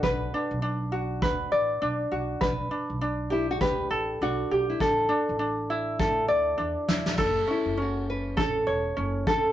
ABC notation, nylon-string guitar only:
X:1
M:4/4
L:1/16
Q:"Swing 16ths" 1/4=101
K:F#phr
V:1 name="Nylon-string guitar"
B4 z12 | D6 E F G4 F3 E | D12 z4 | z2 E2 F2 B2 A6 A2 |]